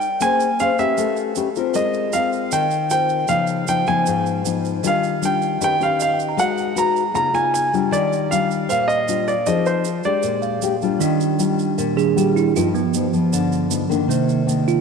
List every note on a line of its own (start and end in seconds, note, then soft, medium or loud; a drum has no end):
0.00 0.19 G3 medium
0.00 0.21 C5 soft
0.00 0.23 G5 medium
0.00 shaker soft
0.20 0.96 A#3 medium
0.20 0.46 C#4 soft
0.20 0.46 G#4 soft
0.20 0.46 C5 medium
0.20 0.61 G#5 medium
0.20 shaker medium
0.40 shaker soft
0.60 0.71 C#4 medium
0.60 0.71 G#4 soft
0.60 0.72 C5 soft
0.60 0.79 F5 medium
0.60 shaker medium
0.79 1.33 C#4 medium
0.79 1.33 G4 medium
0.79 1.34 B4 medium
0.79 1.15 E5 medium
0.79 shaker soft
0.97 1.73 A3 medium
0.97 shaker medium
1.17 shaker soft
1.35 1.48 C#4 medium
1.35 1.48 G4 soft
1.35 1.48 B4 medium
1.35 shaker medium
1.56 2.11 C4 medium
1.56 2.11 F4 medium
1.56 2.11 A#4 medium
1.56 shaker soft
1.74 2.50 G#3 medium
1.74 3.09 A#4 soft
1.74 2.15 D#5 medium
1.74 shaker medium
1.94 shaker soft
2.13 2.66 C4 soft
2.13 2.66 F4 soft
2.13 2.66 A#4 soft
2.13 2.53 F5 medium
2.13 shaker medium
2.33 shaker soft
2.52 3.27 D#3 medium
2.52 2.90 G5 medium
2.52 shaker medium
2.71 shaker soft
2.90 3.26 C4 soft
2.90 3.26 F4 soft
2.90 3.26 A#4 medium
2.90 3.27 G5 medium
2.90 shaker medium
3.09 shaker soft
3.28 4.04 C#3 medium
3.28 3.64 F3 soft
3.28 3.65 B3 soft
3.28 3.65 D#4 soft
3.28 3.69 F5 medium
3.28 shaker medium
3.47 shaker soft
3.67 3.84 F3 soft
3.67 3.84 B3 soft
3.67 3.84 D#4 soft
3.67 3.88 G5 medium
3.67 shaker medium
3.87 4.42 F3 medium
3.87 4.42 B3 medium
3.87 4.43 D#4 medium
3.87 4.23 G#5 medium
3.87 shaker soft
4.06 4.82 G#2 medium
4.06 shaker medium
4.26 shaker soft
4.45 4.82 F3 soft
4.45 4.82 B3 soft
4.45 4.82 D#4 soft
4.45 shaker medium
4.65 shaker soft
4.83 5.59 D#3 medium
4.83 5.19 G3 soft
4.83 5.19 D4 soft
4.83 5.19 F4 medium
4.83 shaker medium
4.87 5.25 F5 medium
5.03 shaker soft
5.22 5.59 G3 soft
5.22 5.59 D4 soft
5.22 5.59 F4 medium
5.22 5.63 G5 medium
5.22 shaker medium
5.42 shaker soft
5.61 6.36 D#3 medium
5.61 5.77 C#4 soft
5.61 5.77 G4 medium
5.61 5.77 B4 medium
5.61 5.82 G5 medium
5.61 shaker medium
5.80 6.35 C#4 soft
5.80 6.35 G4 soft
5.80 6.35 B4 soft
5.80 6.01 F5 medium
5.80 shaker soft
6.00 6.53 D#5 soft
6.00 6.19 F5 medium
6.00 shaker medium
6.14 6.38 G5 soft
6.20 shaker soft
6.29 6.78 A#5 soft
6.37 7.13 G#3 medium
6.37 6.73 D#4 soft
6.37 6.73 F#4 soft
6.37 6.73 B4 medium
6.37 6.75 F#5 medium
6.37 shaker medium
6.58 shaker soft
6.76 7.02 D#4 soft
6.76 7.02 F#4 soft
6.76 7.02 B4 medium
6.76 7.14 A#5 medium
6.76 shaker soft
6.96 shaker soft
7.14 7.90 C#3 medium
7.14 7.31 B3 medium
7.14 7.31 D#4 soft
7.14 7.31 F4 medium
7.14 7.35 A#5 medium
7.14 shaker soft
7.33 7.69 B3 medium
7.33 7.69 D#4 medium
7.33 7.69 F4 medium
7.33 7.53 G#5 medium
7.33 shaker soft
7.54 7.72 G#5 medium
7.54 shaker medium
7.73 8.28 G3 medium
7.73 8.28 D4 medium
7.73 8.29 F4 medium
7.73 shaker soft
7.91 8.67 D#3 medium
7.91 8.32 D5 medium
7.91 shaker medium
8.13 shaker soft
8.31 9.05 G3 medium
8.31 9.05 D4 soft
8.31 9.05 F4 medium
8.31 8.68 F5 medium
8.31 shaker medium
8.51 shaker soft
8.69 9.45 A#2 medium
8.69 9.62 C5 soft
8.69 8.89 F5 medium
8.69 shaker medium
8.84 9.74 F5 soft
8.88 9.28 D#5 medium
8.88 shaker soft
9.08 9.33 G3 soft
9.08 9.33 D4 soft
9.08 9.33 F4 medium
9.08 shaker medium
9.28 9.47 D5 medium
9.28 shaker soft
9.46 10.05 F3 medium
9.46 9.85 C4 soft
9.46 9.85 D#4 soft
9.46 9.85 G#4 soft
9.46 9.66 D#5 medium
9.46 shaker medium
9.66 10.06 C5 medium
9.66 shaker soft
9.84 shaker medium
10.03 10.60 G#3 medium
10.03 10.60 D4 medium
10.03 10.60 G4 medium
10.03 10.59 D5 medium
10.03 shaker soft
10.23 10.99 A#2 medium
10.23 shaker soft
10.42 11.16 F5 soft
10.42 shaker soft
10.62 10.73 G#3 soft
10.62 10.74 D4 soft
10.62 10.74 G4 medium
10.62 shaker medium
10.82 11.37 G3 medium
10.82 11.37 D4 medium
10.82 11.37 F4 medium
10.82 shaker soft
10.99 11.95 D#3 soft
10.99 11.76 D#3 medium
10.99 11.96 G3 soft
10.99 11.96 D4 soft
10.99 shaker medium
11.20 shaker soft
11.39 12.14 G3 soft
11.39 12.14 D4 soft
11.39 12.14 F4 soft
11.39 shaker medium
11.59 shaker soft
11.78 12.53 A#2 medium
11.78 shaker medium
11.96 12.14 D#3 soft
11.96 12.14 G3 soft
11.96 12.15 D4 soft
11.96 12.16 G#4 medium
11.96 shaker soft
12.16 12.52 G3 medium
12.16 12.52 D4 soft
12.16 12.52 F4 medium
12.16 12.36 G4 medium
12.16 shaker medium
12.36 12.55 E4 medium
12.36 shaker soft
12.56 13.31 G2 medium
12.56 12.80 F3 soft
12.56 12.81 B3 medium
12.56 12.81 D#4 medium
12.56 12.68 F4 medium
12.56 shaker medium
12.74 14.05 G2 soft
12.74 14.06 F3 soft
12.74 14.06 B3 soft
12.74 shaker soft
12.94 13.05 F3 soft
12.94 13.06 B3 soft
12.94 13.06 D#4 medium
12.94 shaker medium
13.13 13.68 F3 medium
13.13 13.68 B3 medium
13.13 shaker soft
13.33 14.08 D3 medium
13.33 shaker medium
13.52 shaker soft
13.70 13.82 F3 medium
13.70 13.82 B3 medium
13.70 13.82 D#4 medium
13.70 shaker medium
13.89 14.45 D#3 medium
13.89 14.45 A#3 medium
13.89 14.45 D4 medium
13.89 shaker soft
14.08 14.34 C3 soft
14.08 14.81 C3 medium
14.08 14.35 D#3 soft
14.08 14.35 A#3 soft
14.08 shaker medium
14.29 shaker soft
14.46 14.81 D#3 medium
14.46 14.81 A#3 soft
14.46 14.81 D4 medium
14.46 shaker medium
14.68 14.81 F4 medium
14.68 shaker soft